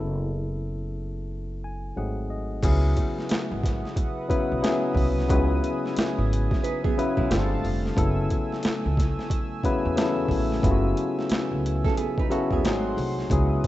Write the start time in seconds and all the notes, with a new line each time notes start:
Already playing: F#1 C#3 F#3 B3
0.00 E4 A4
1.64 G#5
1.96 G#1 F#3 A3 C4 D#4 G#4 F#5
2.30 D#5
2.63 C#2 C#3 F#3 B3 E4 G#4 B4 E5 F#5 D#6, kick, closed hi-hat, crash
2.97 kick, closed hi-hat
3.18 snare
3.29 muted upright bass stroke, snare, closed hi-hat
3.52 G#1
3.64 kick, snare, closed hi-hat
3.85 snare
3.96 kick, closed hi-hat
4.29 C#3 F#3 B3 E4 B4, muted upright bass stroke, kick, closed hi-hat
4.52 B1
4.62 C#3 F#3 B3 E4 G#4, snare, closed hi-hat
4.95 C2, kick, open hi-hat
5.18 snare
5.29 C#2 C#3 F#3 B3 E4 B4 G#5, kick, closed hi-hat
5.64 closed hi-hat
5.86 snare
5.97 muted upright bass stroke, snare, closed hi-hat
6.18 G#1
6.33 closed hi-hat
6.51 kick, snare
6.64 D#4 B4, closed hi-hat
6.84 B3 G#4, kick
6.97 C#3 F#3 B3 E4 B4, muted upright bass stroke, closed hi-hat
7.17 B1 G#3 E4, kick
7.30 G1 D3 G3 A3 C4 F4 G#4 F5 A5, snare, closed hi-hat
7.39 A4
7.64 F1, open hi-hat
7.85 snare
7.96 F#1 C#3 F#3 A3 B3 E4 A4 G#5 E6, kick, closed hi-hat
8.30 kick, closed hi-hat
8.52 snare
8.63 muted upright bass stroke, snare, closed hi-hat
8.85 C#2
8.97 kick, snare, closed hi-hat
9.19 snare
9.30 kick, closed hi-hat
9.63 C#3 F#3 B3 E4 B4, muted upright bass stroke, kick, closed hi-hat
9.85 E2
9.96 C#3 F#3 B3 E4 A4, snare, closed hi-hat
10.29 A1, kick, open hi-hat
10.52 snare
10.62 F#1 C#3 F#3 B3 E4 F4, kick, closed hi-hat
10.71 F#4
10.97 closed hi-hat
11.19 snare
11.30 muted upright bass stroke, snare, closed hi-hat
11.51 C#2
11.66 closed hi-hat
11.85 C#4 A4, kick, snare
11.97 B3 G#4, closed hi-hat
12.18 D#4 B4, kick
12.30 C#3 F#3 B3 C#4 E4 F#4 A4, muted upright bass stroke, closed hi-hat
12.51 D#2 B3 G#4, kick
12.63 G#1 F#3 A3 C4 D#4 G#4 F#5 C6, snare, closed hi-hat
12.97 C2, open hi-hat
13.19 snare
13.30 C#2 C#3 F#3 B3 E4 G#4 B4 E5 F#5 D#6, kick, closed hi-hat